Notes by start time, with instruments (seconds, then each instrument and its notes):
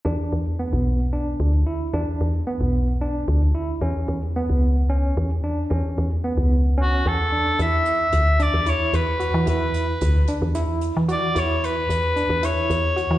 0.05 fm bass E2, tine electric piano D4
0.32 fm bass E2
0.59 tine electric piano B3
0.73 fm bass B1
1.13 tine electric piano D4
1.40 fm bass D2
1.67 tine electric piano E4
1.93 fm bass E2, tine electric piano D4
2.21 fm bass E2
2.47 tine electric piano B3
2.61 fm bass B1
3.01 tine electric piano D4
3.28 fm bass D2
3.55 tine electric piano E4
3.81 fm bass E2, tine electric piano C#4
4.08 fm bass E2
4.36 tine electric piano B3
4.49 fm bass C#2
4.90 tine electric piano C#4
5.17 fm bass E2
5.44 tine electric piano D4
5.70 fm bass E2, tine electric piano C#4
5.98 fm bass E2
6.24 tine electric piano B3
6.37 fm bass C#2
6.78 tine electric piano C#4, soprano saxophone F#4
7.06 fm bass E2, soprano saxophone A4
7.32 tine electric piano D4
7.59 fm bass E2, tine electric piano E4, soprano saxophone E5, closed hi-hat
7.85 closed hi-hat
8.12 fm bass D2, closed hi-hat
8.39 tine electric piano D4, soprano saxophone D5, closed hi-hat
8.54 fm bass E2
8.66 tine electric piano E4, soprano saxophone C#5, closed hi-hat
8.93 fm bass E2, soprano saxophone B4, closed hi-hat
9.20 tine electric piano F#4, closed hi-hat
9.34 fm bass E3
9.46 fm bass E2, tine electric piano E4, soprano saxophone B4, closed hi-hat
9.74 closed hi-hat
10.01 fm bass D2, closed hi-hat
10.27 tine electric piano D4, closed hi-hat
10.42 fm bass E2
10.55 tine electric piano E4, closed hi-hat
10.81 closed hi-hat
10.97 fm bass E3
11.09 tine electric piano F#4, soprano saxophone D5, closed hi-hat
11.35 fm bass E2, tine electric piano E4, soprano saxophone C#5, closed hi-hat
11.64 soprano saxophone B4, closed hi-hat
11.89 fm bass E2, closed hi-hat
12.16 tine electric piano D4, closed hi-hat
12.30 fm bass E2
12.43 tine electric piano E4, soprano saxophone C#5, closed hi-hat
12.70 fm bass E2, closed hi-hat
12.97 tine electric piano F#4, closed hi-hat
13.11 fm bass E3